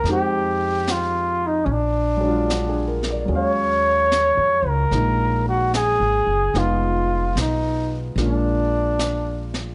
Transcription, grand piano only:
0.08 1.68 G#3 soft
0.08 1.69 C4 soft
0.08 1.69 D#4 soft
0.08 1.69 G4 medium
2.17 3.24 F#3 soft
2.17 3.27 G#3 soft
2.23 3.30 D4 soft
2.28 3.32 F4 soft
2.48 2.86 F#4 soft
2.69 3.03 G#4 soft
2.88 3.13 A#4 soft
3.10 3.38 D5 soft
3.25 6.52 F#3 soft
3.25 4.90 G#3 soft
3.32 6.56 C#4 soft
3.32 6.57 F5 soft
4.91 6.53 G#3 soft
4.91 6.55 A#3 soft
4.91 6.54 D#4 soft
6.54 8.16 G#3 soft
6.54 8.17 B3 soft
6.54 8.17 D#4 soft
6.54 8.17 F4 soft
8.18 9.75 G#3 soft
8.18 9.75 A#3 soft
8.18 9.75 D4 soft
8.18 9.75 F4 soft

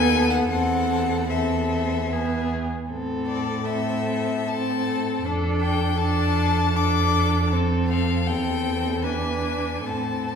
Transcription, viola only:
0.00 0.48 B3 medium
0.50 1.28 C4 medium
1.30 2.13 C4 medium
2.12 2.69 B3 soft
2.90 3.62 C4 soft
3.67 4.47 C4 soft
4.49 5.27 C4 soft
5.25 5.98 D4 medium
5.99 6.75 D4 medium
6.78 7.54 D4 medium
7.52 8.27 C4 medium
8.28 9.06 C4 soft
9.04 9.85 D4 soft
9.86 10.35 C4 soft

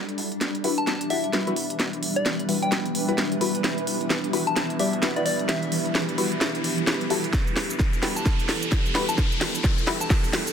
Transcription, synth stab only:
0.64 0.73 G3 loud
0.64 0.73 E4 medium
0.64 0.73 F#4 medium
0.64 0.73 B4 loud
1.10 1.31 G3 medium
1.10 1.31 E4 medium
1.10 1.31 F#4 medium
1.10 1.31 D5 medium
1.33 1.45 G3 medium
1.33 1.45 E4 medium
1.33 1.45 F#4 medium
1.33 1.45 B4 medium
1.47 1.53 G3 medium
1.47 1.53 E4 medium
1.47 1.53 F#4 medium
1.47 1.53 B4 loud
2.49 2.63 G3 medium
2.49 2.63 E4 medium
2.49 2.63 F#4 medium
2.49 2.63 B4 medium
3.09 3.14 G3 loud
3.09 3.14 E4 medium
3.09 3.14 F#4 medium
3.09 3.14 B4 loud
3.41 3.50 G3 loud
3.41 3.50 E4 medium
3.41 3.50 F#4 medium
3.41 3.50 B4 loud
4.33 4.42 G3 medium
4.33 4.42 E4 medium
4.33 4.42 F#4 medium
4.33 4.42 B4 loud
4.79 5.00 G3 medium
4.79 5.00 E4 medium
4.79 5.00 F#4 medium
4.79 5.00 D5 medium
5.03 5.14 G3 medium
5.03 5.14 E4 medium
5.03 5.14 F#4 medium
5.03 5.14 B4 loud
5.16 5.22 G3 medium
5.16 5.22 E4 medium
5.16 5.22 F#4 medium
5.16 5.22 B4 loud
6.18 6.32 G3 medium
6.18 6.32 E4 medium
6.18 6.32 F#4 medium
6.18 6.32 B4 medium
7.10 7.19 G3 medium
7.10 7.19 E4 medium
7.10 7.19 F#4 medium
7.10 7.19 A4 medium
8.03 8.11 G3 medium
8.03 8.11 E4 medium
8.03 8.11 F#4 medium
8.03 8.11 B4 loud
8.95 9.04 G3 medium
8.95 9.04 E4 medium
8.95 9.04 F#4 medium
8.95 9.04 B4 loud
9.87 9.96 G3 medium
9.87 9.96 E4 medium
9.87 9.96 F#4 medium
9.87 9.96 B4 loud

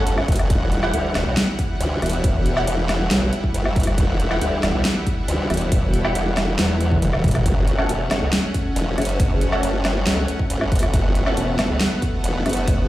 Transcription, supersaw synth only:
0.00 0.46 A3 medium
0.00 0.46 C#4 medium
0.00 7.42 F#5 medium
0.50 7.42 G3 medium
0.50 7.42 E4 medium
7.46 12.88 A3 medium
7.46 10.90 C#4 medium
7.46 12.88 F#5 medium
10.94 12.88 B3 medium

